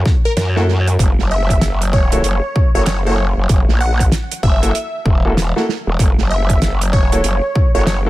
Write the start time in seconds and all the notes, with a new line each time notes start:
0.06 kick, snare
0.25 A#4
0.37 F#2 A#4, snare, closed hi-hat
0.56 A#3 E4 F#4 A4, snare
0.69 snare
0.87 closed hi-hat
0.99 F#1, kick, closed hi-hat
1.19 F#1, snare
1.31 E5
1.50 kick, closed hi-hat
1.61 F#1, snare, closed hi-hat
1.82 closed hi-hat
1.93 C#5, kick
2.12 A#3 E4 F#4 A4, closed hi-hat
2.24 F#1, closed hi-hat
2.56 kick
2.75 F#1 A#3 E4 F#4 A4 C#5
2.86 C#5, snare, closed hi-hat
3.06 A#3 E4 F#4 A4 C#5
3.37 F#1
3.49 F#1, kick, closed hi-hat
3.68 A#1, snare
3.81 F#5
4.00 kick, closed hi-hat
4.12 snare, closed hi-hat
4.32 closed hi-hat
4.43 F#1 E5, kick
4.62 A#3 E4 F#4 A4, closed hi-hat
4.75 closed hi-hat
5.05 E1, kick
5.25 A#3 E4 F#4 A4
5.37 snare, closed hi-hat
5.56 A#3 E4 F#4 A4, snare
5.69 snare
5.87 E1
5.99 F#1, kick, closed hi-hat
6.18 F#1, snare
6.31 E5
6.50 kick, closed hi-hat
6.62 F#1, snare, closed hi-hat
6.82 closed hi-hat
6.93 C#5, kick
7.12 A#3 E4 F#4 A4, closed hi-hat
7.24 F#1, closed hi-hat
7.56 kick
7.75 F#1 A#3 E4 F#4 A4 C#5
7.87 C#5, snare, closed hi-hat
8.06 A#3 E4 F#4 A4